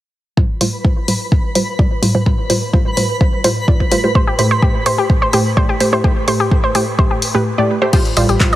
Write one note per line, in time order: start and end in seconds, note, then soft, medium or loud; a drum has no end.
0.37 0.49 A2 medium
0.37 0.49 G3 medium
0.37 0.49 F4 medium
0.37 7.46 B4 medium
0.37 0.49 C5 loud
0.37 7.46 B5 medium
0.37 kick loud
0.61 0.82 A2 medium
0.61 0.82 G3 medium
0.61 0.82 F4 medium
0.61 0.82 C5 loud
0.61 open hi-hat medium
0.84 1.05 A2 medium
0.84 1.05 G3 medium
0.84 1.05 F4 medium
0.84 1.05 C5 loud
0.84 kick loud
1.08 1.16 A2 medium
1.08 1.16 G3 medium
1.08 1.16 F4 medium
1.08 1.16 C5 medium
1.08 open hi-hat loud
1.32 1.53 A2 medium
1.32 1.53 G3 medium
1.32 1.53 F4 medium
1.32 1.53 C5 medium
1.32 kick loud
1.55 1.76 A2 medium
1.55 1.76 G3 medium
1.55 1.76 F4 medium
1.55 1.76 C5 loud
1.55 open hi-hat loud
1.79 1.91 A2 loud
1.79 1.91 G3 medium
1.79 1.91 F4 medium
1.79 1.91 D5 loud
1.79 kick loud
2.02 2.10 A2 medium
2.02 2.10 G3 medium
2.02 2.10 F4 medium
2.02 2.10 C5 medium
2.02 open hi-hat loud
2.15 2.22 A2 medium
2.15 2.22 G3 medium
2.15 2.22 F4 medium
2.15 2.22 C5 loud
2.26 2.38 A2 medium
2.26 2.38 G3 medium
2.26 2.38 F4 medium
2.26 2.38 C5 loud
2.26 kick loud
2.50 2.71 A2 medium
2.50 2.71 G3 medium
2.50 2.71 F4 medium
2.50 2.71 C5 loud
2.50 open hi-hat loud
2.73 2.94 A2 medium
2.73 2.94 G3 medium
2.73 2.94 F4 medium
2.73 2.94 C5 loud
2.73 kick loud
2.97 3.05 A2 medium
2.97 3.05 G3 medium
2.97 3.05 F4 medium
2.97 3.05 C5 medium
2.97 open hi-hat loud
3.21 3.42 A2 medium
3.21 3.42 G3 medium
3.21 3.42 F4 medium
3.21 3.42 C5 medium
3.21 kick loud
3.44 3.65 A2 medium
3.44 3.65 G3 medium
3.44 3.65 F4 medium
3.44 3.65 C5 loud
3.44 open hi-hat loud
3.68 3.80 A2 medium
3.68 3.80 G3 medium
3.68 3.80 F4 medium
3.68 3.80 D5 loud
3.68 kick loud
3.80 kick medium
3.92 3.99 A2 medium
3.92 3.99 G3 medium
3.92 3.99 F4 medium
3.92 3.99 C5 medium
3.92 open hi-hat loud
4.04 4.11 A2 medium
4.04 4.11 G3 medium
4.04 4.11 F4 medium
4.04 4.11 C5 medium
4.15 4.27 A2 medium
4.15 4.27 A3 medium
4.15 4.27 G4 medium
4.15 4.21 C5 medium
4.15 4.27 C5 loud
4.15 kick loud
4.27 4.33 G4 medium
4.39 4.60 A2 medium
4.39 4.60 A3 medium
4.39 4.60 G4 medium
4.39 4.60 C5 loud
4.39 open hi-hat loud
4.51 4.57 C5 medium
4.62 4.83 A2 medium
4.62 4.83 A3 medium
4.62 4.69 G4 medium
4.62 4.83 G4 medium
4.62 4.83 C5 loud
4.62 kick loud
4.86 4.94 A2 medium
4.86 4.94 A3 medium
4.86 4.94 G4 medium
4.86 4.94 C5 medium
4.86 4.92 C5 medium
4.86 open hi-hat loud
4.98 5.04 G4 medium
5.10 5.31 A2 medium
5.10 5.31 A3 medium
5.10 5.31 G4 medium
5.10 5.31 C5 medium
5.10 kick loud
5.22 5.28 C5 medium
5.33 5.54 A2 medium
5.33 5.54 A3 medium
5.33 5.54 G4 medium
5.33 5.39 G4 medium
5.33 5.54 C5 loud
5.33 open hi-hat loud
5.57 5.69 A2 medium
5.57 5.69 A3 medium
5.57 5.69 G4 medium
5.57 5.63 C5 medium
5.57 5.69 D5 loud
5.57 kick loud
5.69 5.75 G4 medium
5.80 5.88 A2 medium
5.80 5.88 A3 medium
5.80 5.88 G4 medium
5.80 5.88 C5 medium
5.80 open hi-hat loud
5.93 6.00 A2 medium
5.93 6.00 A3 medium
5.93 6.00 G4 medium
5.93 6.00 C5 medium
5.93 5.98 C5 medium
6.04 6.16 A2 medium
6.04 6.16 A3 medium
6.04 6.16 G4 medium
6.04 6.10 G4 medium
6.04 6.16 C5 loud
6.04 kick loud
6.28 6.49 A2 medium
6.28 6.49 A3 medium
6.28 6.49 G4 medium
6.28 6.49 C5 loud
6.28 6.34 C5 medium
6.28 open hi-hat loud
6.40 6.46 G4 medium
6.51 6.72 A2 loud
6.51 6.72 A3 medium
6.51 6.72 G4 medium
6.51 6.72 C5 loud
6.51 kick loud
6.64 6.69 C5 medium
6.75 6.83 A2 medium
6.75 6.83 A3 medium
6.75 6.81 G4 medium
6.75 6.83 G4 medium
6.75 6.83 C5 medium
6.75 open hi-hat loud
6.99 7.20 A2 medium
6.99 7.20 A3 medium
6.99 7.20 G4 medium
6.99 7.05 C5 medium
6.99 7.20 C5 medium
6.99 kick loud
7.11 7.17 G4 medium
7.22 open hi-hat loud
7.35 7.41 A2 medium
7.35 7.42 A3 medium
7.35 7.43 G4 medium
7.35 7.41 G4 medium
7.35 7.42 B4 medium
7.58 7.79 A2 medium
7.58 7.79 A3 medium
7.58 7.79 G4 medium
7.58 7.79 D5 medium
7.82 7.90 A3 medium
7.82 7.90 G4 medium
7.82 7.90 C5 medium
7.93 8.05 A2 medium
7.93 8.05 G3 medium
7.93 8.05 F4 medium
7.93 7.99 G4 medium
7.93 8.56 B4 medium
7.93 8.05 C5 loud
7.93 8.56 B5 medium
7.93 kick loud
7.93 closed hi-hat medium
7.93 crash medium
7.93 tambourine soft
8.05 closed hi-hat soft
8.05 tambourine soft
8.17 8.25 A1 medium
8.17 8.38 A2 loud
8.17 8.38 G3 medium
8.17 8.38 F4 medium
8.17 8.38 C5 loud
8.17 8.23 D5 medium
8.17 open hi-hat loud
8.17 tambourine medium
8.29 8.37 A1 medium
8.29 8.35 G4 medium
8.29 closed hi-hat medium
8.29 tambourine soft
8.40 8.56 A2 medium
8.40 8.56 G3 medium
8.40 8.56 F4 medium
8.40 8.56 C5 loud
8.40 kick loud
8.40 clap loud
8.40 closed hi-hat medium
8.40 tambourine soft
8.53 8.56 D5 medium
8.53 closed hi-hat soft
8.53 tambourine soft